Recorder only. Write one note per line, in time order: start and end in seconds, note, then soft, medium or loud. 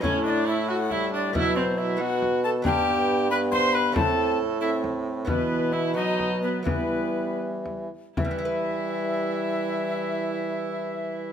0.03 0.24 C#5 loud
0.25 0.31 D#5 loud
0.30 0.47 D5 loud
0.47 0.70 E5 loud
0.68 0.94 F#5 loud
0.92 1.13 E5 loud
1.14 1.36 D5 loud
1.35 1.57 E5 loud
1.56 1.79 C5 loud
1.56 1.60 C#5 loud
1.78 2.02 E5 medium
2.00 2.43 F#5 loud
2.44 2.50 A5 loud
2.66 3.30 G5 loud
3.31 3.37 B5 loud
3.52 3.74 C6 loud
3.73 3.95 B5 loud
3.95 4.38 A5 loud
4.61 4.82 E5 loud
5.28 5.74 B4 medium
5.73 5.95 E5 loud
5.95 6.41 D#5 loud
6.42 6.65 B4 medium
6.66 7.39 B4 medium
8.17 11.33 E5 medium